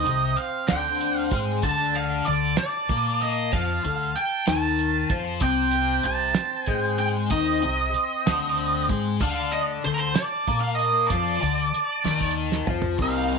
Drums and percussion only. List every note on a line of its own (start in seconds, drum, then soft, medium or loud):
0.06 closed hi-hat medium
0.37 closed hi-hat medium
0.68 snare loud
0.68 closed hi-hat loud
1.00 closed hi-hat medium
1.31 kick loud
1.31 closed hi-hat medium
1.62 kick medium
1.62 closed hi-hat medium
1.94 closed hi-hat medium
2.25 closed hi-hat medium
2.57 snare loud
2.57 closed hi-hat medium
2.89 kick loud
2.89 closed hi-hat medium
3.21 closed hi-hat medium
3.53 kick loud
3.53 closed hi-hat medium
3.84 closed hi-hat medium
4.16 closed hi-hat medium
4.47 snare loud
4.47 closed hi-hat loud
4.79 closed hi-hat medium
5.10 kick loud
5.10 closed hi-hat medium
5.40 kick loud
5.40 closed hi-hat medium
5.71 closed hi-hat medium
6.03 closed hi-hat medium
6.34 snare loud
6.34 closed hi-hat loud
6.66 kick loud
6.66 closed hi-hat medium
6.98 closed hi-hat medium
7.30 kick medium
7.30 closed hi-hat medium
7.62 closed hi-hat medium
7.94 closed hi-hat medium
8.27 snare loud
8.27 closed hi-hat loud
8.57 closed hi-hat medium
8.89 kick loud
8.89 closed hi-hat medium
9.20 kick loud
9.20 closed hi-hat medium
9.52 closed hi-hat medium
9.84 closed hi-hat medium
10.15 snare loud
10.15 closed hi-hat medium
10.47 kick loud
10.47 closed hi-hat medium
10.79 closed hi-hat medium
11.10 kick medium
11.10 closed hi-hat medium
11.42 closed hi-hat medium
11.74 closed hi-hat medium
12.05 snare medium
12.21 kick medium
12.52 snare medium
12.67 floor tom medium
12.82 floor tom medium
12.98 kick loud
12.98 crash medium
13.31 closed hi-hat medium